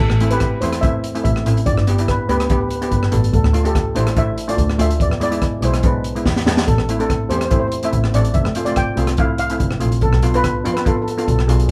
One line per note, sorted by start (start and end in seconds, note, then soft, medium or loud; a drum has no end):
0.00 0.31 A4 medium
0.10 0.55 A1 medium
0.10 cross-stick medium
0.20 0.27 A3 medium
0.20 0.27 C4 medium
0.20 0.27 E4 medium
0.20 closed hi-hat medium
0.31 0.50 A3 medium
0.31 0.50 C4 medium
0.31 0.50 G4 medium
0.31 0.59 B4 medium
0.31 closed hi-hat medium
0.40 kick medium
0.40 cross-stick medium
0.40 closed hi-hat soft
0.61 1.17 E2 medium
0.61 0.75 A3 medium
0.61 0.75 C4 medium
0.61 0.75 E4 medium
0.61 0.81 C5 medium
0.61 closed hi-hat medium
0.73 cross-stick medium
0.73 closed hi-hat medium
0.81 1.02 A3 medium
0.81 1.02 C4 medium
0.81 1.02 E4 medium
0.81 1.23 E5 medium
0.81 kick loud
0.81 closed hi-hat medium
1.04 closed hi-hat medium
1.15 1.33 A3 medium
1.15 1.33 C4 medium
1.15 1.34 E4 medium
1.15 closed hi-hat medium
1.24 1.43 A1 medium
1.24 1.67 E5 medium
1.24 kick medium
1.24 closed hi-hat medium
1.36 cross-stick medium
1.45 1.64 A1 medium
1.45 1.66 A3 medium
1.45 1.67 C4 medium
1.45 1.67 E4 medium
1.45 closed hi-hat medium
1.57 closed hi-hat soft
1.66 1.76 G1 medium
1.66 2.09 D5 medium
1.66 kick medium
1.66 closed hi-hat medium
1.76 2.22 G1 medium
1.76 cross-stick medium
1.87 1.94 B3 medium
1.87 1.94 D4 medium
1.87 1.94 G4 medium
1.87 closed hi-hat medium
1.98 2.17 B3 medium
1.98 2.17 D4 medium
1.98 2.17 E4 medium
1.98 closed hi-hat medium
2.08 2.28 B4 medium
2.08 kick medium
2.08 cross-stick medium
2.08 closed hi-hat medium
2.28 2.83 D2 medium
2.28 2.42 B3 medium
2.28 2.42 D4 medium
2.28 2.42 G4 medium
2.28 2.36 B4 medium
2.28 closed hi-hat medium
2.37 2.43 B4 medium
2.37 cross-stick medium
2.37 closed hi-hat medium
2.44 2.51 B4 medium
2.50 2.69 B3 medium
2.50 2.69 D4 medium
2.50 2.69 G4 medium
2.50 2.59 B4 medium
2.50 kick loud
2.50 closed hi-hat medium
2.61 2.67 B4 medium
2.69 2.75 B4 soft
2.69 closed hi-hat medium
2.76 2.82 B4 soft
2.81 3.00 B3 medium
2.81 3.00 D4 medium
2.81 3.01 G4 medium
2.81 2.87 B4 medium
2.81 closed hi-hat medium
2.88 3.10 G1 medium
2.88 2.95 B4 medium
2.88 kick medium
2.88 closed hi-hat medium
2.97 3.04 B4 medium
3.03 cross-stick medium
3.12 3.31 A1 medium
3.12 3.33 B3 medium
3.12 3.33 D4 medium
3.12 3.33 A4 medium
3.12 closed hi-hat medium
3.24 closed hi-hat medium
3.33 3.43 D2 medium
3.33 3.63 A4 medium
3.33 kick medium
3.33 closed hi-hat soft
3.44 3.89 D2 medium
3.44 cross-stick medium
3.53 3.60 A3 medium
3.53 3.60 D4 medium
3.53 3.61 F4 medium
3.53 closed hi-hat medium
3.64 3.83 A3 medium
3.64 3.83 D4 medium
3.64 3.84 G4 medium
3.64 3.97 A4 medium
3.64 closed hi-hat medium
3.75 kick medium
3.75 cross-stick medium
3.75 closed hi-hat medium
3.95 4.51 A1 medium
3.95 4.08 A3 medium
3.95 4.09 D4 medium
3.95 4.09 E4 medium
3.95 4.18 C5 medium
3.95 closed hi-hat medium
4.07 cross-stick medium
4.07 closed hi-hat medium
4.16 4.35 A3 medium
4.16 4.36 D4 medium
4.16 4.36 E4 medium
4.16 4.47 E5 medium
4.16 kick medium
4.16 closed hi-hat medium
4.38 closed hi-hat medium
4.48 4.67 A3 medium
4.48 4.67 D4 medium
4.48 4.68 F4 medium
4.48 4.81 D5 medium
4.48 closed hi-hat medium
4.58 4.76 D2 medium
4.58 kick medium
4.58 closed hi-hat medium
4.70 cross-stick medium
4.79 4.97 D2 medium
4.79 5.00 A3 medium
4.79 5.00 D4 medium
4.79 5.00 F4 medium
4.79 5.02 E5 medium
4.79 closed hi-hat medium
4.90 closed hi-hat medium
5.00 5.10 E2 medium
5.00 5.22 D5 medium
5.00 kick medium
5.00 closed hi-hat medium
5.10 5.56 E2 medium
5.10 cross-stick medium
5.20 5.27 G#3 medium
5.20 5.28 B3 medium
5.20 5.28 E4 medium
5.20 5.65 D5 medium
5.20 closed hi-hat medium
5.31 5.50 G#3 medium
5.31 5.50 B3 medium
5.31 5.51 E4 medium
5.31 closed hi-hat medium
5.42 kick medium
5.42 cross-stick medium
5.42 closed hi-hat medium
5.61 6.17 B1 medium
5.61 5.76 G#3 medium
5.61 5.76 B3 medium
5.61 5.76 E4 medium
5.61 5.85 C5 medium
5.61 closed hi-hat medium
5.74 cross-stick medium
5.74 closed hi-hat medium
5.83 6.03 G#3 medium
5.83 6.03 B3 medium
5.83 6.03 D4 medium
5.83 6.24 B4 medium
5.83 kick loud
5.83 closed hi-hat medium
6.04 closed hi-hat medium
6.15 6.34 G#3 medium
6.15 6.35 B3 medium
6.15 6.35 E4 medium
6.15 closed hi-hat medium
6.25 6.44 E2 medium
6.25 kick medium
6.25 snare soft
6.36 snare soft
6.46 6.65 E2 medium
6.46 6.67 G#3 medium
6.46 6.68 B3 medium
6.46 6.68 D4 medium
6.46 snare medium
6.57 snare medium
6.67 6.77 A1 medium
6.67 6.99 A4 medium
6.67 kick loud
6.67 closed hi-hat soft
6.77 7.23 A1 medium
6.77 cross-stick medium
6.89 6.95 A3 medium
6.89 6.96 C4 medium
6.89 6.96 E4 medium
6.89 closed hi-hat medium
6.99 7.18 A3 medium
6.99 7.18 C4 medium
6.99 7.19 D4 medium
6.99 7.31 A4 medium
6.99 closed hi-hat medium
7.10 kick medium
7.10 cross-stick medium
7.10 closed hi-hat medium
7.30 7.85 E2 medium
7.30 7.43 A3 medium
7.30 7.43 C4 medium
7.30 7.44 G4 medium
7.30 7.37 C5 medium
7.30 closed hi-hat medium
7.38 7.44 C5 medium
7.38 cross-stick medium
7.38 closed hi-hat medium
7.45 7.50 C5 medium
7.50 7.70 A3 medium
7.50 7.70 C4 medium
7.50 7.70 E4 medium
7.50 7.58 C5 medium
7.50 kick loud
7.50 closed hi-hat medium
7.60 7.66 C5 medium
7.67 7.75 C5 medium
7.72 closed hi-hat medium
7.83 8.02 A3 medium
7.83 8.02 C4 medium
7.83 8.02 E4 medium
7.83 8.16 E5 medium
7.83 closed hi-hat medium
7.93 8.11 A1 medium
7.93 kick medium
7.93 closed hi-hat medium
8.04 cross-stick medium
8.13 8.32 A1 medium
8.13 8.35 A3 medium
8.13 8.35 C4 medium
8.13 8.36 D4 medium
8.13 8.36 D5 medium
8.13 closed hi-hat medium
8.25 closed hi-hat medium
8.34 8.44 F1 medium
8.34 8.67 E5 medium
8.34 kick medium
8.34 closed hi-hat medium
8.44 8.90 F1 medium
8.44 cross-stick medium
8.55 8.62 A3 medium
8.55 8.63 C4 medium
8.55 8.63 F4 medium
8.55 closed hi-hat medium
8.65 8.85 A3 medium
8.65 8.85 C4 medium
8.65 8.86 F4 medium
8.65 8.76 D5 medium
8.65 closed hi-hat medium
8.76 9.20 G5 medium
8.76 kick medium
8.76 cross-stick medium
8.76 closed hi-hat medium
8.97 9.52 C2 medium
8.97 9.10 A3 medium
8.97 9.11 C4 medium
8.97 9.11 F4 medium
8.97 closed hi-hat medium
9.07 cross-stick medium
9.07 closed hi-hat medium
9.17 9.37 A3 medium
9.17 9.38 C4 medium
9.17 9.38 E4 medium
9.17 9.38 F5 loud
9.17 kick loud
9.17 closed hi-hat medium
9.38 9.78 F5 medium
9.38 closed hi-hat medium
9.50 9.69 A3 medium
9.50 9.69 C4 medium
9.50 9.70 E4 medium
9.50 closed hi-hat medium
9.60 9.78 F1 medium
9.60 kick medium
9.60 closed hi-hat medium
9.71 cross-stick medium
9.80 9.99 A#1 medium
9.80 10.01 A3 medium
9.80 10.02 C4 medium
9.80 10.02 F4 medium
9.80 closed hi-hat medium
9.92 closed hi-hat medium
10.01 10.11 B1 medium
10.01 10.35 A4 medium
10.01 kick medium
10.01 closed hi-hat soft
10.13 10.58 B1 medium
10.13 cross-stick medium
10.22 10.29 B3 medium
10.22 10.30 D4 medium
10.22 10.30 F4 medium
10.22 closed hi-hat medium
10.34 10.53 B3 medium
10.34 10.53 D4 medium
10.34 10.53 F4 medium
10.34 10.63 B4 medium
10.34 closed hi-hat medium
10.44 kick medium
10.44 cross-stick medium
10.44 closed hi-hat medium
10.65 11.19 F2 medium
10.65 10.78 B3 medium
10.65 10.78 D4 medium
10.65 10.78 F4 medium
10.65 closed hi-hat medium
10.74 10.87 B4 medium
10.74 cross-stick medium
10.74 closed hi-hat medium
10.85 11.04 B3 medium
10.85 11.05 D4 medium
10.85 11.05 F4 medium
10.85 10.95 A4 medium
10.85 kick medium
10.85 closed hi-hat medium
10.97 11.01 A4 medium
11.02 11.09 A4 medium
11.08 11.17 A4 medium
11.08 closed hi-hat medium
11.17 11.36 B3 medium
11.17 11.36 D4 medium
11.17 11.37 F4 medium
11.17 11.22 A4 medium
11.17 closed hi-hat medium
11.23 11.29 A4 medium
11.28 11.46 B1 medium
11.28 11.39 A4 medium
11.28 kick medium
11.28 closed hi-hat medium
11.39 cross-stick medium
11.47 11.66 B1 medium
11.47 11.69 B3 medium
11.47 11.70 D4 medium
11.47 11.70 F4 medium
11.47 11.55 G#4 medium
11.47 closed hi-hat medium
11.56 11.62 G#4 soft
11.56 closed hi-hat medium
11.63 11.70 G#4 medium